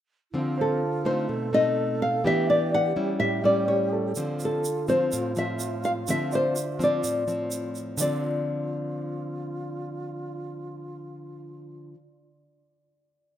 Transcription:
0.32 D3 F3 C4 F4
0.57 A4 C5
1.05 A3 C4 D#4 C5
1.29 B2 A4
1.53 A3 C4 D#4 D#5
2.02 F5
2.24 E3 B3 D4 G4 E5
2.50 D5
2.74 F#5
2.96 G3 C#4 E4
3.19 A2 G4 E5
3.44 G3 C#4 E4 D5
3.68 C#5
3.93 A4
4.15 D3 F3 C4 F4, shaker
4.40 shaker
4.45 A4
4.64 shaker
4.88 F3 C4 C5, shaker
5.12 A2, shaker
5.36 F3 C4 E5, shaker
5.59 shaker
5.84 F5, shaker
6.07 D3 F3 C4 E5, shaker
6.32 C5 D5, shaker
6.56 shaker
6.79 F3 C4, shaker
6.83 D5
7.03 A2, shaker
7.28 F3 C4, shaker
7.51 shaker
7.75 shaker
7.97 D3 F3 F4 D5, shaker
8.02 C4

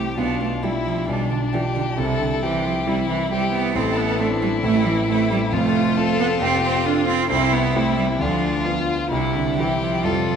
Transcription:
Already playing: C2 C3 C4 E4 G4
0.17 B1 B2 B3 D4 F4
0.42 A3
0.63 G3 D4 E4 F4 G4
0.85 F3
1.08 B1 B2 G3 D4
1.30 D3
1.52 E3 D4 F4 G4
1.76 D3
1.97 C2 C3 E4 A4
2.20 D3
2.42 E3 C4 E4 G4
2.65 F3
2.86 C2 C3 G3 E4
3.09 E3
3.31 G3 C4 E4 G4
3.53 B3
3.75 A1 A2 C4 E4 A4
3.97 B3
4.19 A3 C4 D4 E4 A4
4.42 G3
4.63 A1 A2 A3 E4
4.86 E3
5.08 A3 C4 E4 A4
5.31 G3
5.52 F1 F2 A3 F4
5.97 C4 F4 A4
6.19 B3
6.41 F1 F2 C4 G4
6.64 C4
6.85 C4 D4 F4 A4
7.08 C4
7.29 C2 C3 C4 E4
7.53 B3
7.75 A3 C4 E4 G4
7.97 G3
8.19 D2 D3 F3 D4 F4
8.65 B3 F4
9.11 C2 C3 E4
9.35 D3
9.57 E3 C4 E4 G4
9.80 F3
10.03 F1 F2 G3 C4 F4 A4
10.27 F3

